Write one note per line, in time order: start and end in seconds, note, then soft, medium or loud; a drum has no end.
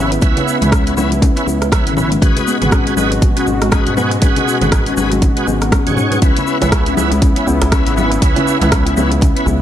0.00 0.18 G#1 medium
0.00 2.18 C#3 medium
0.00 2.18 B3 medium
0.00 0.11 C#4 medium
0.00 0.11 E4 medium
0.00 2.18 E4 medium
0.00 0.10 F#4 medium
0.00 0.11 B4 medium
0.12 0.21 B4 medium
0.12 closed hi-hat soft
0.12 shaker soft
0.21 0.33 C#2 loud
0.21 0.58 C#4 medium
0.21 0.58 E4 medium
0.21 0.58 B4 loud
0.21 kick loud
0.21 closed hi-hat medium
0.21 shaker medium
0.37 0.47 C#4 medium
0.37 closed hi-hat soft
0.37 muted conga soft
0.37 low conga medium
0.37 shaker soft
0.48 shaker loud
0.61 0.93 C#2 loud
0.61 0.67 G#3 loud
0.61 0.95 C#4 medium
0.61 0.94 E4 medium
0.61 0.95 B4 medium
0.61 closed hi-hat soft
0.61 mid tom medium
0.61 shaker soft
0.72 0.80 C#4 medium
0.72 kick loud
0.72 cross-stick loud
0.72 closed hi-hat medium
0.72 muted conga soft
0.72 shaker medium
0.87 closed hi-hat soft
0.87 shaker soft
0.97 1.31 C#2 loud
0.97 1.10 B3 loud
0.97 1.11 C#4 medium
0.97 1.11 E4 medium
0.97 1.11 B4 medium
0.97 high conga loud
0.97 shaker medium
1.12 closed hi-hat soft
1.12 high conga medium
1.12 shaker soft
1.22 1.35 C#4 loud
1.22 kick loud
1.22 closed hi-hat medium
1.22 muted conga medium
1.22 low conga loud
1.22 shaker medium
1.36 1.47 C#4 medium
1.36 1.47 E4 medium
1.36 1.47 B4 loud
1.36 closed hi-hat soft
1.36 shaker soft
1.47 1.81 C#2 loud
1.47 1.60 F#4 medium
1.47 high conga medium
1.47 shaker loud
1.62 1.71 B4 medium
1.62 cross-stick medium
1.62 closed hi-hat soft
1.62 muted conga soft
1.62 shaker soft
1.72 1.94 C#4 medium
1.72 1.94 E4 medium
1.72 1.94 B4 medium
1.72 kick loud
1.72 cross-stick loud
1.72 closed hi-hat medium
1.72 high conga medium
1.72 shaker medium
1.87 2.18 G#1 medium
1.87 1.97 C#4 medium
1.87 closed hi-hat soft
1.87 mid tom medium
1.87 shaker soft
1.97 2.11 C#4 medium
1.97 2.11 E4 medium
1.97 2.11 B4 loud
1.97 muted conga medium
1.97 high conga medium
1.97 shaker medium
2.12 2.17 G#3 loud
2.12 closed hi-hat soft
2.12 high conga medium
2.12 shaker soft
2.22 2.33 G#1 loud
2.22 6.18 B2 medium
2.22 6.18 G#3 medium
2.22 2.30 C#4 medium
2.22 2.58 F#4 loud
2.22 6.18 F#4 loud
2.22 2.58 G#4 medium
2.22 2.58 B4 loud
2.22 kick loud
2.22 closed hi-hat medium
2.22 shaker soft
2.37 closed hi-hat soft
2.37 muted conga soft
2.37 low conga medium
2.37 shaker soft
2.47 2.60 B3 loud
2.47 shaker medium
2.61 2.93 G#1 medium
2.61 2.95 F#4 medium
2.61 2.95 G#4 medium
2.61 2.95 B4 medium
2.61 closed hi-hat soft
2.61 mid tom medium
2.61 low conga medium
2.61 shaker soft
2.72 2.85 C#4 loud
2.72 kick loud
2.72 cross-stick loud
2.72 closed hi-hat medium
2.72 shaker medium
2.87 closed hi-hat soft
2.87 shaker soft
2.97 3.31 G#1 loud
2.97 3.11 F#4 medium
2.97 3.10 F#4 medium
2.97 3.11 G#4 medium
2.97 3.11 B4 medium
2.97 high conga loud
2.97 shaker loud
3.12 3.21 B4 medium
3.12 closed hi-hat soft
3.12 high conga medium
3.12 shaker soft
3.22 kick loud
3.22 closed hi-hat medium
3.22 muted conga medium
3.22 high conga medium
3.22 shaker medium
3.37 3.47 C#4 medium
3.37 3.47 F#4 medium
3.37 3.47 G#4 medium
3.37 3.47 B4 loud
3.37 closed hi-hat soft
3.37 shaker soft
3.47 3.81 G#1 loud
3.47 high conga medium
3.47 shaker medium
3.61 3.67 G#3 loud
3.61 cross-stick medium
3.61 closed hi-hat soft
3.61 muted conga soft
3.61 shaker soft
3.72 3.80 C#4 medium
3.72 3.94 F#4 medium
3.72 3.94 G#4 medium
3.72 3.94 B4 medium
3.72 kick loud
3.72 cross-stick loud
3.72 closed hi-hat medium
3.72 shaker medium
3.87 4.18 G#2 medium
3.87 closed hi-hat soft
3.87 shaker soft
3.97 4.10 B3 loud
3.97 4.11 F#4 medium
3.97 4.11 G#4 medium
3.97 4.11 B4 loud
3.97 muted conga medium
3.97 high conga medium
3.97 shaker medium
4.11 closed hi-hat soft
4.11 shaker soft
4.22 4.33 G#1 loud
4.22 4.35 C#4 loud
4.22 4.58 F#4 loud
4.22 4.58 G#4 medium
4.22 4.58 B4 loud
4.22 kick loud
4.22 closed hi-hat medium
4.22 shaker medium
4.36 closed hi-hat soft
4.36 muted conga soft
4.36 low conga medium
4.36 shaker soft
4.48 4.61 F#4 medium
4.48 shaker medium
4.61 4.93 G#1 loud
4.61 4.95 F#4 medium
4.61 4.95 G#4 medium
4.61 4.95 B4 medium
4.61 4.71 B4 medium
4.61 closed hi-hat soft
4.61 mid tom medium
4.61 low conga medium
4.61 shaker soft
4.72 kick loud
4.72 cross-stick loud
4.72 closed hi-hat medium
4.72 shaker soft
4.86 4.97 C#4 medium
4.86 closed hi-hat soft
4.86 shaker soft
4.97 5.31 G#1 loud
4.97 5.12 F#4 medium
4.97 5.11 G#4 medium
4.97 5.11 B4 medium
4.97 high conga loud
4.97 shaker loud
5.12 5.17 G#3 loud
5.12 closed hi-hat soft
5.12 high conga medium
5.12 shaker soft
5.22 5.30 C#4 medium
5.22 kick loud
5.22 closed hi-hat medium
5.22 muted conga soft
5.22 low conga loud
5.22 shaker medium
5.37 5.47 F#4 medium
5.37 5.47 G#4 medium
5.37 5.47 B4 loud
5.37 closed hi-hat soft
5.37 shaker soft
5.47 5.81 G#1 loud
5.47 5.60 B3 loud
5.47 high conga medium
5.47 shaker loud
5.61 cross-stick medium
5.61 closed hi-hat soft
5.61 muted conga soft
5.61 shaker soft
5.72 5.85 C#4 loud
5.72 kick loud
5.72 cross-stick loud
5.72 closed hi-hat medium
5.72 high conga medium
5.72 shaker soft
5.87 6.18 G#2 medium
5.87 6.20 F#4 medium
5.87 6.20 G#4 medium
5.87 6.20 C#5 medium
5.87 closed hi-hat soft
5.87 mid tom medium
5.87 shaker soft
5.97 6.10 F#4 medium
5.97 muted conga soft
5.97 high conga loud
5.97 shaker medium
6.12 6.21 B4 medium
6.12 closed hi-hat soft
6.12 high conga medium
6.12 shaker soft
6.22 6.33 C#2 loud
6.22 9.62 C#3 medium
6.22 9.62 B3 medium
6.22 6.58 C#4 loud
6.22 6.35 C#4 medium
6.22 6.58 E4 medium
6.22 9.62 E4 medium
6.22 6.58 B4 loud
6.22 kick loud
6.22 closed hi-hat medium
6.22 djembe tone medium
6.22 shaker soft
6.37 closed hi-hat soft
6.37 muted conga medium
6.37 low conga medium
6.37 shaker soft
6.47 6.60 F#4 medium
6.47 shaker medium
6.61 6.93 C#2 loud
6.61 6.95 C#4 medium
6.61 6.95 E4 medium
6.61 6.95 B4 medium
6.61 6.71 B4 medium
6.61 closed hi-hat soft
6.61 mid tom medium
6.61 djembe slap medium
6.61 djembe tone medium
6.61 low conga medium
6.61 shaker soft
6.72 kick loud
6.72 cross-stick loud
6.72 closed hi-hat medium
6.72 shaker soft
6.86 6.97 C#4 medium
6.86 closed hi-hat soft
6.86 shaker soft
6.97 7.31 C#2 loud
6.97 7.11 C#4 medium
6.97 7.11 E4 medium
6.97 7.11 B4 medium
6.97 high conga loud
6.97 shaker loud
7.12 7.18 G#3 loud
7.12 closed hi-hat soft
7.12 djembe tone medium
7.12 high conga medium
7.12 shaker soft
7.22 7.30 C#4 medium
7.22 kick loud
7.22 closed hi-hat medium
7.22 muted conga soft
7.22 high conga medium
7.22 shaker soft
7.36 7.47 C#4 medium
7.36 7.47 E4 medium
7.36 7.47 B4 loud
7.36 closed hi-hat soft
7.36 shaker soft
7.47 7.81 C#2 loud
7.47 7.60 B3 loud
7.47 djembe tone medium
7.47 high conga medium
7.47 shaker loud
7.62 cross-stick medium
7.62 closed hi-hat soft
7.62 djembe slap loud
7.62 muted conga soft
7.62 djembe bass medium
7.62 shaker soft
7.72 7.94 C#4 medium
7.72 7.85 C#4 loud
7.72 7.94 E4 medium
7.72 7.95 B4 medium
7.72 kick loud
7.72 cross-stick loud
7.72 closed hi-hat medium
7.72 shaker soft
7.87 8.18 G#1 medium
7.87 closed hi-hat soft
7.87 shaker soft
7.96 8.11 C#4 medium
7.96 8.11 E4 medium
7.96 8.10 F#4 medium
7.96 8.11 B4 loud
7.96 muted conga soft
7.96 djembe tone medium
7.96 high conga medium
7.96 shaker medium
8.12 8.21 B4 medium
8.12 closed hi-hat soft
8.12 shaker soft
8.22 8.33 C#2 loud
8.22 8.58 C#4 loud
8.22 8.58 E4 medium
8.22 8.58 B4 loud
8.22 kick loud
8.22 closed hi-hat medium
8.22 shaker medium
8.36 8.47 C#4 medium
8.36 closed hi-hat soft
8.36 muted conga medium
8.36 djembe tone medium
8.36 low conga medium
8.36 shaker soft
8.47 shaker medium
8.61 8.93 C#2 loud
8.61 8.67 G#3 loud
8.61 8.94 C#4 medium
8.61 8.95 E4 medium
8.61 8.94 B4 medium
8.61 closed hi-hat soft
8.61 mid tom medium
8.61 djembe slap loud
8.61 shaker soft
8.72 8.80 C#4 medium
8.72 kick loud
8.72 cross-stick loud
8.72 closed hi-hat medium
8.72 muted conga soft
8.72 shaker medium
8.85 closed hi-hat soft
8.85 djembe tone medium
8.85 shaker soft
8.97 9.31 C#2 loud
8.97 9.10 B3 loud
8.97 9.11 C#4 medium
8.97 9.11 E4 medium
8.97 9.11 B4 medium
8.97 high conga loud
8.97 shaker medium
9.11 closed hi-hat soft
9.11 high conga medium
9.11 shaker soft
9.21 9.35 C#4 loud
9.21 kick loud
9.21 closed hi-hat medium
9.21 muted conga soft
9.21 djembe tone medium
9.21 low conga loud
9.21 shaker medium
9.36 9.47 C#4 medium
9.36 9.47 E4 medium
9.36 9.47 B4 loud
9.36 closed hi-hat soft
9.36 shaker soft
9.46 9.62 C#2 loud
9.46 9.60 F#4 medium
9.46 high conga medium
9.46 djembe bass medium
9.46 shaker medium